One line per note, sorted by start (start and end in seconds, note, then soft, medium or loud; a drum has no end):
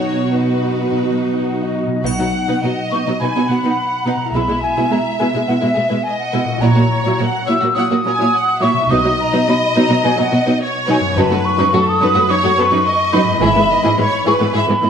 0.00 0.90 B2 soft
0.00 1.85 B2 soft
0.00 1.09 F#3 soft
0.00 0.34 D#4 soft
0.00 0.33 F#4 soft
0.00 0.52 F#4 soft
0.00 1.74 F#4 soft
0.00 0.34 C#5 soft
0.15 1.28 B3 soft
0.34 0.71 D#4 soft
0.34 1.82 D#4 soft
0.34 1.82 F#4 soft
0.34 1.77 B4 soft
0.54 1.66 F#4 soft
0.72 1.47 D#4 soft
0.92 1.86 B2 soft
1.10 4.37 F#3 soft
1.29 1.90 B3 soft
1.48 1.85 D#4 soft
1.48 1.64 F#5 soft
1.62 2.06 D#5 soft
1.67 1.99 F#4 soft
1.86 4.15 B2 soft
1.86 1.95 D#4 soft
1.92 4.20 B3 soft
1.96 4.32 D#4 soft
2.01 2.18 B1 soft
2.01 4.35 F#4 soft
2.01 2.10 B4 soft
2.01 2.91 F#5 medium
2.05 2.11 B2 soft
2.05 2.11 B3 soft
2.05 2.11 D#4 soft
2.05 2.59 F#5 soft
2.05 triangle soft
2.19 2.25 B2 soft
2.19 2.25 F#3 soft
2.19 2.25 B3 soft
2.19 2.25 D#4 soft
2.48 2.54 B2 soft
2.48 2.55 B3 soft
2.48 2.54 D#4 soft
2.48 2.54 B4 soft
2.63 2.69 B2 soft
2.63 2.70 F#3 soft
2.63 2.70 B3 soft
2.63 2.70 D#4 soft
2.63 3.21 D#5 soft
2.91 2.98 B2 soft
2.91 2.99 B3 soft
2.91 2.99 D#4 soft
2.91 2.97 B4 soft
2.91 2.98 C#6 medium
3.07 3.12 B2 soft
3.07 3.13 F#3 soft
3.07 3.13 B3 soft
3.07 3.12 D#4 soft
3.20 3.26 B2 soft
3.20 3.28 B3 soft
3.20 3.28 D#4 soft
3.20 3.26 B4 soft
3.20 3.50 G#5 soft
3.20 4.07 B5 soft
3.35 3.41 B2 soft
3.35 3.42 F#3 soft
3.35 3.42 B3 soft
3.35 3.42 D#4 soft
3.49 3.55 B2 soft
3.49 3.56 B3 soft
3.49 3.56 F#4 soft
3.49 4.36 F#5 soft
3.63 3.69 B2 soft
3.63 3.70 B3 soft
3.63 3.70 D#4 soft
3.63 3.69 B4 soft
4.05 4.12 B2 soft
4.05 4.12 B3 soft
4.05 4.13 D#4 soft
4.05 4.12 B4 soft
4.05 4.37 A#5 medium
4.16 6.56 B2 soft
4.21 6.58 B3 soft
4.25 6.52 E4 soft
4.30 6.62 G#4 soft
4.34 4.48 B1 soft
4.34 4.40 B2 soft
4.34 4.41 G#3 soft
4.34 4.41 E4 soft
4.34 4.41 B4 soft
4.34 6.04 E5 soft
4.34 4.62 B5 medium
4.49 4.54 B2 soft
4.49 4.55 G#3 soft
4.49 4.55 E4 soft
4.62 4.93 G#5 soft
4.77 4.83 B2 soft
4.77 4.84 G#3 soft
4.77 4.83 E4 soft
4.77 4.83 B4 soft
4.91 4.96 B2 soft
4.91 4.97 G#3 soft
4.91 4.98 E4 soft
4.91 5.18 A#5 soft
5.19 5.25 B2 soft
5.19 5.26 G#3 soft
5.19 5.26 E4 soft
5.19 5.26 B4 soft
5.19 5.26 G#5 soft
5.33 5.39 B2 soft
5.33 5.41 G#3 soft
5.33 5.40 E4 soft
5.47 5.54 B2 soft
5.47 5.54 G#3 soft
5.47 5.54 E4 soft
5.47 5.53 B4 soft
5.47 5.54 F#5 medium
5.61 5.68 B2 soft
5.61 5.69 G#3 soft
5.61 5.67 E4 soft
5.61 6.05 E5 medium
5.74 5.82 B2 soft
5.74 5.83 G#3 soft
5.74 5.83 B3 soft
5.74 5.80 G#4 soft
5.89 5.96 B2 soft
5.89 5.96 G#3 soft
5.89 5.96 E4 soft
5.89 5.95 B4 soft
6.03 6.62 D#5 soft
6.03 6.18 G#5 medium
6.19 6.62 F#5 medium
6.32 6.39 B2 soft
6.32 6.39 G#3 soft
6.32 6.39 E4 soft
6.32 6.38 B4 soft
6.45 8.85 A#2 soft
6.49 8.87 C#4 soft
6.53 8.89 E4 soft
6.58 6.75 A#1 soft
6.58 6.68 A#2 soft
6.58 6.68 F#3 soft
6.58 8.86 F#4 soft
6.58 6.68 C#5 soft
6.58 7.46 A#5 medium
6.62 6.68 E4 soft
6.62 7.20 C#5 medium
6.75 6.82 A#2 soft
6.75 6.82 F#3 soft
6.75 6.82 A#3 soft
6.75 6.81 F#4 soft
7.03 7.11 A#2 medium
7.03 7.12 F#3 soft
7.03 7.12 E4 soft
7.03 7.10 C#5 soft
7.18 7.25 A#2 soft
7.18 7.26 F#3 soft
7.18 7.26 A#3 soft
7.18 7.24 F#4 soft
7.18 7.49 F#5 medium
7.46 7.54 A#2 soft
7.46 7.55 F#3 soft
7.46 7.55 E4 soft
7.46 7.52 C#5 soft
7.46 7.57 E5 soft
7.46 7.76 E6 medium
7.61 7.68 A#2 soft
7.61 7.69 F#3 soft
7.61 7.69 A#3 soft
7.61 7.67 F#4 soft
7.75 7.82 A#2 medium
7.75 7.82 F#3 soft
7.75 7.82 E4 soft
7.75 7.82 C#5 soft
7.75 7.86 F#5 medium
7.75 8.63 D#6 medium
7.90 7.96 A#2 soft
7.90 7.97 F#3 soft
7.90 7.96 A#3 soft
7.90 7.97 F#4 soft
8.05 8.11 A#2 soft
8.05 8.11 F#3 soft
8.05 8.11 C#4 soft
8.05 8.12 A#4 soft
8.05 8.34 G#5 soft
8.18 8.26 A#2 soft
8.18 8.25 F#3 soft
8.18 8.24 E4 soft
8.18 8.27 C#5 soft
8.36 8.64 F#5 medium
8.62 8.68 A#2 soft
8.62 8.68 F#3 medium
8.62 8.68 E4 medium
8.62 8.68 C#5 medium
8.62 8.91 E5 medium
8.62 8.92 C#6 medium
8.73 11.11 B2 soft
8.77 11.03 B3 soft
8.82 11.08 D#4 soft
8.87 9.04 B1 medium
8.87 8.96 B2 soft
8.87 8.96 F#3 medium
8.87 8.96 D#4 medium
8.87 12.77 F#4 soft
8.87 9.20 D#6 medium
8.92 8.98 B4 soft
8.92 10.58 D#5 medium
9.04 9.10 B2 soft
9.04 9.10 F#3 soft
9.04 9.11 D#4 soft
9.20 9.51 A#5 medium
9.33 9.39 B2 medium
9.33 9.39 F#3 soft
9.33 9.39 D#4 medium
9.33 9.39 B4 soft
9.48 9.54 B2 soft
9.48 9.54 F#3 soft
9.48 9.54 D#4 soft
9.48 9.78 B5 medium
9.75 9.81 B2 medium
9.75 9.82 F#3 medium
9.75 9.82 D#4 medium
9.75 9.81 B4 medium
9.75 10.06 A#5 medium
9.88 9.96 B2 soft
9.88 9.96 F#3 soft
9.88 9.94 D#4 soft
10.03 10.10 B2 medium
10.03 10.10 F#3 medium
10.03 10.09 D#4 medium
10.03 10.09 B4 medium
10.03 10.19 G#5 medium
10.17 10.24 B2 soft
10.17 10.23 F#3 soft
10.17 10.24 D#4 soft
10.17 10.61 F#5 medium
10.32 10.38 B2 soft
10.32 10.38 F#3 soft
10.32 10.38 B3 soft
10.32 10.38 F#4 soft
10.44 10.52 B2 medium
10.44 10.52 F#3 soft
10.44 10.52 D#4 medium
10.44 10.51 B4 soft
10.63 11.17 C#5 medium
10.86 10.95 B2 medium
10.86 10.94 F#3 medium
10.86 10.95 D#4 medium
10.86 10.93 B4 medium
10.86 10.97 G#5 medium
11.00 13.36 F#2 soft
11.05 13.28 B3 soft
11.09 13.41 D#4 soft
11.14 11.30 F#1 medium
11.14 11.23 F#2 medium
11.14 11.23 F#3 medium
11.14 11.23 D#4 medium
11.14 13.36 B4 soft
11.14 11.22 B4 medium
11.14 11.46 A5 medium
11.19 11.75 B4 medium
11.31 11.37 F#2 soft
11.31 11.37 F#3 soft
11.31 11.37 A3 soft
11.31 11.37 F#4 soft
11.45 11.91 C#6 medium
11.58 11.65 F#2 medium
11.58 11.64 F#3 medium
11.58 11.65 D#4 medium
11.58 11.65 B4 medium
11.73 11.80 F#2 soft
11.73 11.79 F#3 soft
11.73 11.79 A3 soft
11.73 11.80 F#4 soft
11.73 12.03 A4 medium
11.89 12.32 D#6 medium
12.01 12.08 F#2 medium
12.01 12.07 F#3 medium
12.01 12.07 D#4 soft
12.01 12.30 B4 medium
12.01 12.08 B4 medium
12.15 12.21 F#2 soft
12.15 12.21 F#3 soft
12.15 12.21 A3 soft
12.15 12.22 F#4 soft
12.28 12.35 F#2 medium
12.28 12.34 F#3 medium
12.28 12.34 D#4 medium
12.28 12.35 B4 medium
12.28 12.58 C#5 medium
12.28 13.14 C#6 medium
12.43 12.50 F#2 soft
12.43 12.49 F#3 medium
12.43 12.49 A3 soft
12.43 12.50 F#4 soft
12.57 12.64 F#2 soft
12.57 12.63 F#3 soft
12.57 12.63 B3 medium
12.57 12.65 A4 soft
12.57 12.86 B4 medium
12.72 12.78 F#2 medium
12.72 12.77 F#3 medium
12.72 12.77 D#4 medium
12.72 12.78 B4 medium
12.86 13.42 D#5 medium
13.13 13.20 F#2 medium
13.13 13.19 F#3 medium
13.13 13.19 D#4 medium
13.13 13.20 B4 medium
13.13 14.26 B5 medium
13.24 14.90 G#2 soft
13.29 14.90 B3 soft
13.34 14.90 E4 soft
13.34 14.90 B4 soft
13.41 13.55 G#1 medium
13.41 13.48 G#2 medium
13.41 13.47 E3 medium
13.41 13.47 E4 medium
13.41 13.48 G#4 medium
13.41 13.71 E5 medium
13.55 13.62 G#2 soft
13.55 13.61 E3 soft
13.55 13.61 G#3 soft
13.55 13.61 B3 soft
13.71 13.99 D#5 medium
13.84 13.90 G#2 medium
13.84 13.90 E3 medium
13.84 13.90 E4 soft
13.84 13.90 G#4 soft
13.97 14.04 G#2 soft
13.97 14.03 E3 soft
13.97 14.03 G#3 soft
13.97 14.04 B3 soft
13.97 14.27 C#5 medium
14.26 14.32 G#2 soft
14.26 14.31 E3 medium
14.26 14.32 E4 soft
14.26 14.33 G#4 medium
14.26 14.55 B4 medium
14.26 14.33 C#6 medium
14.40 14.45 G#2 soft
14.40 14.46 E3 soft
14.40 14.46 G#3 soft
14.40 14.46 B3 soft
14.54 14.60 G#2 medium
14.54 14.60 E3 medium
14.54 14.60 E4 medium
14.54 14.60 G#4 medium
14.54 14.64 E5 medium
14.54 14.90 B5 medium
14.68 14.74 G#2 soft
14.68 14.74 E3 soft
14.68 14.74 G#3 soft
14.68 14.76 B3 soft
14.82 14.88 G#2 soft
14.82 14.88 E3 soft
14.82 14.88 B3 soft
14.82 14.89 E4 soft
14.82 14.90 D#5 medium